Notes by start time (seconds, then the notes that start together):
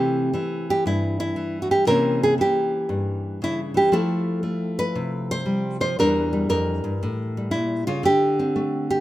Already playing: C3 E3 A3 C4 G4
0.33 E3 C4
0.70 G4
0.86 G2 E4
1.20 E4
1.36 E3
1.62 F#4
1.71 G4
1.87 C3 E3 A#3 C#4 A#4
2.23 G#4
2.38 E3 G4
2.89 G2
3.42 C#3 E4
3.74 E3 G4
3.92 F3 A3 E4 A4
4.43 A3
4.79 B4
4.95 C3
5.31 C5
5.46 G3
5.81 F3 C5
5.99 E2 E3 G3 D4 A#4
6.33 G3
6.49 F2 A#4
6.84 G2
7.03 A2
7.37 G3
7.51 A#2 E4
7.87 C#3 F4
8.03 D3 G4
8.39 C4
8.56 A3
8.91 G4